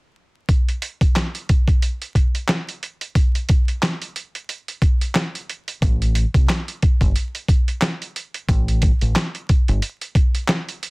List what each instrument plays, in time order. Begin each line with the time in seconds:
0.49 kick, closed hi-hat
0.69 closed hi-hat
0.82 closed hi-hat
1.01 kick, closed hi-hat
1.16 snare, clap, closed hi-hat
1.35 closed hi-hat
1.49 kick, closed hi-hat
1.68 kick, closed hi-hat
1.82 closed hi-hat
2.02 closed hi-hat
2.15 kick, closed hi-hat
2.35 closed hi-hat
2.48 snare, clap, closed hi-hat
2.69 closed hi-hat
2.83 closed hi-hat
3.01 closed hi-hat
3.15 kick, closed hi-hat
3.35 closed hi-hat
3.49 kick, closed hi-hat
3.68 closed hi-hat
3.82 snare, clap, closed hi-hat
4.02 closed hi-hat
4.16 closed hi-hat
4.35 closed hi-hat
4.49 closed hi-hat
4.68 closed hi-hat
4.82 kick, closed hi-hat
5.01 closed hi-hat
5.15 snare, clap, closed hi-hat
5.35 closed hi-hat
5.50 closed hi-hat
5.68 closed hi-hat
5.82 fingered electric bass A1, kick, closed hi-hat
6.02 closed hi-hat
6.15 closed hi-hat
6.34 fingered electric bass C2, kick, closed hi-hat
6.49 snare, clap, closed hi-hat
6.68 closed hi-hat
6.82 kick, closed hi-hat
7.01 fingered electric bass G1, kick, closed hi-hat
7.16 closed hi-hat
7.35 closed hi-hat
7.48 kick, closed hi-hat
7.68 closed hi-hat
7.81 snare, clap, closed hi-hat
8.02 closed hi-hat
8.16 closed hi-hat
8.34 closed hi-hat
8.49 fingered electric bass A1, kick, closed hi-hat
8.68 closed hi-hat
8.82 kick, closed hi-hat
9.01 fingered electric bass A1, closed hi-hat
9.15 snare, clap, closed hi-hat
9.35 closed hi-hat
9.49 kick, closed hi-hat
9.68 fingered electric bass G1, closed hi-hat
9.82 closed hi-hat
10.01 closed hi-hat
10.15 kick, closed hi-hat
10.35 closed hi-hat
10.48 snare, clap, closed hi-hat
10.69 closed hi-hat
10.83 closed hi-hat